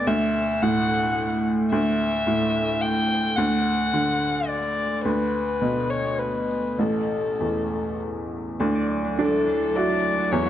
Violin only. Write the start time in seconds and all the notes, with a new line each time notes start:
0.07 E5
0.62 F#5
1.72 E5
2.81 G5
3.36 F#5
4.48 D5
5.05 B4
5.90 C#5
6.19 B4
6.80 A4
9.18 A4
9.76 D5
10.32 C#5